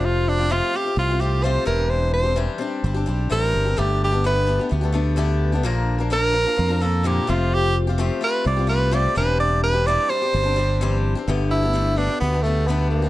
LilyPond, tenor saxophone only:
\new Staff \with { instrumentName = "Tenor saxophone" } { \time 4/4 \key c \major \tempo 4 = 128 f'8 d'8 f'8 g'8 f'8 g'8 c''8 bes'8 | c''8 c''8 r2 bes'4 | g'8 g'8 b'4 r2 | r4 bes'4. a'8 g'8 f'8 |
g'8 r4 b'8 d''8 b'8 d''8 b'8 | d''8 b'8 d''8 c''2 r8 | r8 e'4 d'8 b8 a8 b8 bes8 | }